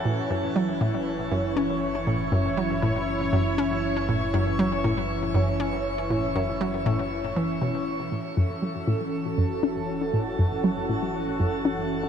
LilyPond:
<<
  \new Staff \with { instrumentName = "Analog synth pad" } { \time 4/4 \key fis \minor \tempo 4 = 119 <e cis' e' cis''>1~ | <e cis' e' cis''>1~ | <e cis' e' cis''>1~ | <e cis' e' cis''>1 |
<e cis' fis' a'>1~ | <e cis' fis' a'>1 | }
  \new Staff \with { instrumentName = "Synth arpeggio sound" } { \clef bass \time 4/4 \key fis \minor a,8 fis,8 fis8 a,8 r8 fis,8 cis'8 r8 | a,8 fis,8 fis8 a,8 r8 fis,8 cis'8 r8 | a,8 fis,8 fis8 a,8 r8 fis,8 cis'8 r8 | a,8 fis,8 fis8 a,8 r8 e8 b,8 r8 |
a,8 fis,8 fis8 a,8 r8 fis,8 cis'8 r8 | a,8 fis,8 fis8 a,8 r8 fis,8 cis'8 r8 | }
  \new Staff \with { instrumentName = "Synth drone" } { \clef bass \time 4/4 \key fis \minor fis,,1~ | fis,,1~ | fis,,1~ | fis,,1 |
fis,,1~ | fis,,1 | }
>>